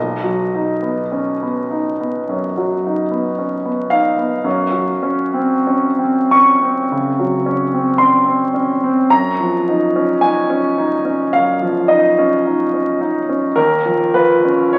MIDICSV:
0, 0, Header, 1, 2, 480
1, 0, Start_track
1, 0, Tempo, 1171875
1, 944, Tempo, 1075269
1, 1903, Time_signature, 4, 2, 24, 8
1, 1904, Tempo, 1219512
1, 2864, Tempo, 1107011
1, 4784, Tempo, 1134216
1, 6250, End_track
2, 0, Start_track
2, 0, Title_t, "Grand piano"
2, 0, Program_c, 0, 0
2, 0, Note_on_c, 0, 35, 41
2, 0, Note_on_c, 0, 75, 62
2, 58, Control_c, 0, 64, 127
2, 96, Note_on_c, 0, 54, 36
2, 223, Note_on_c, 0, 63, 37
2, 292, Note_off_c, 0, 54, 0
2, 338, Note_on_c, 0, 59, 31
2, 419, Note_off_c, 0, 63, 0
2, 459, Note_on_c, 0, 61, 30
2, 539, Note_off_c, 0, 59, 0
2, 584, Note_on_c, 0, 59, 32
2, 586, Note_off_c, 0, 61, 0
2, 700, Note_on_c, 0, 63, 31
2, 778, Note_off_c, 0, 59, 0
2, 822, Note_on_c, 0, 59, 33
2, 892, Note_off_c, 0, 63, 0
2, 931, Note_off_c, 0, 35, 0
2, 938, Note_on_c, 0, 42, 35
2, 1013, Note_off_c, 0, 59, 0
2, 1065, Note_on_c, 0, 54, 34
2, 1137, Note_off_c, 0, 42, 0
2, 1194, Note_on_c, 0, 63, 35
2, 1261, Note_off_c, 0, 54, 0
2, 1305, Note_on_c, 0, 59, 35
2, 1384, Note_off_c, 0, 63, 0
2, 1426, Note_on_c, 0, 61, 29
2, 1499, Note_off_c, 0, 59, 0
2, 1547, Note_off_c, 0, 61, 0
2, 1547, Note_on_c, 0, 59, 32
2, 1657, Note_on_c, 0, 77, 69
2, 1661, Note_on_c, 0, 63, 38
2, 1664, Note_off_c, 0, 75, 0
2, 1735, Note_off_c, 0, 59, 0
2, 1783, Note_on_c, 0, 59, 35
2, 1853, Note_off_c, 0, 63, 0
2, 1898, Note_on_c, 0, 42, 49
2, 1902, Note_off_c, 0, 59, 0
2, 1909, Control_c, 0, 64, 0
2, 1978, Control_c, 0, 64, 127
2, 2007, Note_on_c, 0, 54, 37
2, 2129, Note_on_c, 0, 61, 38
2, 2195, Note_off_c, 0, 54, 0
2, 2251, Note_on_c, 0, 60, 40
2, 2325, Note_off_c, 0, 61, 0
2, 2383, Note_on_c, 0, 61, 35
2, 2459, Note_off_c, 0, 60, 0
2, 2507, Note_on_c, 0, 60, 38
2, 2511, Note_off_c, 0, 61, 0
2, 2628, Note_off_c, 0, 77, 0
2, 2635, Note_on_c, 0, 85, 71
2, 2643, Note_on_c, 0, 61, 39
2, 2703, Note_off_c, 0, 60, 0
2, 2754, Note_on_c, 0, 60, 40
2, 2824, Note_off_c, 0, 61, 0
2, 2845, Note_off_c, 0, 42, 0
2, 2874, Note_on_c, 0, 49, 40
2, 2939, Note_off_c, 0, 60, 0
2, 2995, Note_on_c, 0, 54, 40
2, 3063, Note_off_c, 0, 49, 0
2, 3109, Note_on_c, 0, 61, 40
2, 3182, Note_off_c, 0, 54, 0
2, 3230, Note_on_c, 0, 60, 37
2, 3297, Note_off_c, 0, 61, 0
2, 3336, Note_on_c, 0, 84, 72
2, 3343, Note_on_c, 0, 61, 33
2, 3344, Note_off_c, 0, 85, 0
2, 3415, Note_off_c, 0, 60, 0
2, 3453, Note_on_c, 0, 60, 37
2, 3461, Note_off_c, 0, 61, 0
2, 3579, Note_on_c, 0, 61, 38
2, 3647, Note_off_c, 0, 60, 0
2, 3706, Note_on_c, 0, 60, 41
2, 3771, Note_off_c, 0, 61, 0
2, 3817, Note_off_c, 0, 84, 0
2, 3822, Note_on_c, 0, 82, 80
2, 3823, Note_off_c, 0, 60, 0
2, 3826, Control_c, 0, 64, 0
2, 3831, Note_on_c, 0, 42, 50
2, 3900, Control_c, 0, 64, 127
2, 3952, Note_on_c, 0, 53, 42
2, 4075, Note_on_c, 0, 63, 41
2, 4141, Note_off_c, 0, 53, 0
2, 4193, Note_on_c, 0, 61, 42
2, 4261, Note_off_c, 0, 63, 0
2, 4303, Note_on_c, 0, 80, 77
2, 4304, Note_off_c, 0, 82, 0
2, 4313, Note_on_c, 0, 63, 36
2, 4380, Note_off_c, 0, 61, 0
2, 4428, Note_off_c, 0, 63, 0
2, 4428, Note_on_c, 0, 61, 42
2, 4548, Note_on_c, 0, 63, 38
2, 4616, Note_off_c, 0, 61, 0
2, 4666, Note_on_c, 0, 61, 41
2, 4737, Note_off_c, 0, 63, 0
2, 4771, Note_off_c, 0, 42, 0
2, 4783, Note_off_c, 0, 80, 0
2, 4787, Note_on_c, 0, 77, 74
2, 4795, Note_on_c, 0, 42, 40
2, 4856, Note_off_c, 0, 61, 0
2, 4910, Note_on_c, 0, 53, 44
2, 5021, Note_on_c, 0, 75, 60
2, 5023, Note_off_c, 0, 77, 0
2, 5025, Note_on_c, 0, 63, 41
2, 5097, Note_off_c, 0, 53, 0
2, 5149, Note_on_c, 0, 61, 43
2, 5213, Note_off_c, 0, 63, 0
2, 5265, Note_on_c, 0, 63, 36
2, 5334, Note_off_c, 0, 61, 0
2, 5380, Note_off_c, 0, 63, 0
2, 5382, Note_on_c, 0, 61, 34
2, 5495, Note_off_c, 0, 75, 0
2, 5498, Note_on_c, 0, 63, 40
2, 5569, Note_off_c, 0, 61, 0
2, 5618, Note_on_c, 0, 61, 35
2, 5687, Note_off_c, 0, 63, 0
2, 5723, Note_off_c, 0, 42, 0
2, 5729, Note_on_c, 0, 70, 70
2, 5734, Note_on_c, 0, 39, 48
2, 5736, Note_off_c, 0, 61, 0
2, 5740, Control_c, 0, 64, 0
2, 5818, Control_c, 0, 64, 127
2, 5856, Note_on_c, 0, 53, 40
2, 5975, Note_off_c, 0, 70, 0
2, 5977, Note_on_c, 0, 71, 67
2, 5985, Note_on_c, 0, 65, 39
2, 6051, Note_off_c, 0, 53, 0
2, 6107, Note_on_c, 0, 61, 39
2, 6177, Note_off_c, 0, 65, 0
2, 6222, Note_off_c, 0, 71, 0
2, 6225, Note_on_c, 0, 73, 61
2, 6231, Note_on_c, 0, 63, 32
2, 6250, Note_off_c, 0, 39, 0
2, 6250, Note_off_c, 0, 61, 0
2, 6250, Note_off_c, 0, 63, 0
2, 6250, Note_off_c, 0, 73, 0
2, 6250, End_track
0, 0, End_of_file